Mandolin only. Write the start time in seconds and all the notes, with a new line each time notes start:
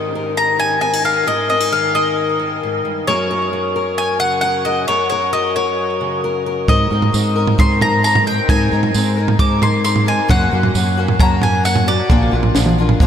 Already playing: D#5
0.37 A#5
0.60 G#5
0.81 G#5
1.05 F5
1.28 D#5
1.50 D#5
1.73 F5
1.95 D#5
3.07 C#5
3.98 G#5
4.20 F#5
4.41 F#5
4.65 D#5
4.88 C#5
5.10 C#5
5.33 D#5
5.56 C#5
6.69 D#5
7.59 C6
7.82 A#5
8.04 A#5
8.27 G5
8.49 G#5
9.40 D6
9.63 C6
9.85 C6
10.08 G#5
10.30 F#5
11.20 A#5
11.43 G#5
11.65 F#5
11.88 D5